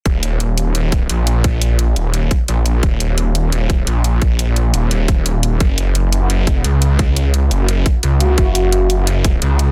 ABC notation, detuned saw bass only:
X:1
M:4/4
L:1/8
Q:1/4=173
K:Ebm
V:1 name="Detuned saw bass" clef=bass
E,,, E,,,3 E,,,2 B,,,2- | B,,,3 E,,,2 z B,,,2 | E,,, E,,,3 E,,,2 B,,,2- | B,,,3 E,,,4- E,,, |
G,,, G,,,3 G,,,2 D,,2- | D,,3 G,,,2 z D,,2 | G,,, G,,,3 G,,,2 D,,2 |]